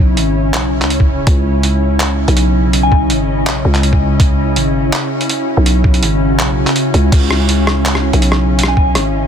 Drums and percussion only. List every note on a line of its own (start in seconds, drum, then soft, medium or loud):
0.17 closed hi-hat medium
0.54 clap loud
0.54 closed hi-hat medium
0.82 clap soft
0.82 closed hi-hat soft
0.90 closed hi-hat medium
1.00 kick medium
1.27 kick loud
1.27 closed hi-hat medium
1.63 closed hi-hat medium
2.00 clap loud
2.00 closed hi-hat medium
2.28 closed hi-hat soft
2.37 closed hi-hat medium
2.73 closed hi-hat medium
2.92 kick medium
3.10 closed hi-hat medium
3.47 clap loud
3.47 closed hi-hat medium
3.75 clap soft
3.75 closed hi-hat soft
3.83 closed hi-hat medium
3.93 kick medium
4.20 kick loud
4.20 closed hi-hat medium
4.56 closed hi-hat medium
4.93 clap loud
4.93 closed hi-hat medium
5.21 closed hi-hat soft
5.29 closed hi-hat medium
5.66 closed hi-hat medium
5.84 kick medium
5.94 closed hi-hat soft
6.03 closed hi-hat medium
6.39 clap loud
6.67 clap soft
6.67 closed hi-hat soft
6.76 closed hi-hat medium
6.94 closed hi-hat soft
7.12 kick loud
7.12 closed hi-hat medium
7.12 crash medium
7.31 cross-stick medium
7.49 closed hi-hat medium
7.67 cross-stick medium
7.85 clap loud
7.85 closed hi-hat medium
7.95 cross-stick medium
8.13 closed hi-hat soft
8.22 closed hi-hat medium
8.32 cross-stick medium
8.59 closed hi-hat medium
8.63 cross-stick medium
8.77 kick medium
8.95 cross-stick medium
8.95 closed hi-hat medium